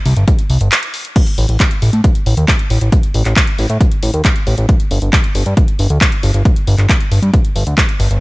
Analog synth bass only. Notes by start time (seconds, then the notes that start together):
0.06 C2
0.17 G1
0.50 C2
0.61 G1
1.38 A1
1.49 A1
1.82 A1
1.93 A2
2.26 A1
2.37 D#2
2.70 A1
2.81 A1
3.14 A1
3.25 A1
3.59 A1
3.70 A2
4.03 A1
4.14 D#2
4.47 A1
4.58 A1
4.91 G1
5.02 G1
5.35 G1
5.46 G2
5.79 G1
5.90 D2
6.23 G1
6.34 G1
6.67 G1
6.78 G1
7.11 G1
7.22 G2
7.56 G1
7.67 D2
8.00 G1
8.11 G1